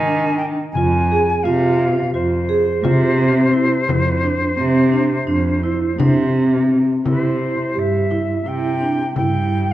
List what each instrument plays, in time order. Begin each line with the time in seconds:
Already playing: cello D#3, flute G#5
0.07 vibraphone D4
0.37 flute G5
0.72 cello F2, flute G#5, frame drum
0.77 vibraphone F4
1.12 vibraphone G#4
1.43 cello C3, vibraphone F4, flute F5
1.80 frame drum
2.14 cello F2, vibraphone F4, flute C5
2.49 vibraphone G#4
2.84 cello C3, vibraphone F4, frame drum
3.18 vibraphone C4
3.53 vibraphone E4
3.88 cello F2, frame drum
4.23 vibraphone D4
4.57 cello C3, vibraphone C4, frame drum
4.92 vibraphone D4, frame drum
5.27 cello F2, vibraphone D4
5.63 vibraphone E4
5.98 cello C3, vibraphone D4, frame drum
6.34 vibraphone C4
6.72 frame drum
7.04 cello C3, vibraphone E4, frame drum
7.09 flute C5
7.75 cello G2, vibraphone G4, flute E5, frame drum
8.11 vibraphone E4, frame drum
8.46 cello C3, vibraphone E4, flute G5, frame drum
8.81 vibraphone D4
9.16 cello G2, vibraphone E4, flute G5, frame drum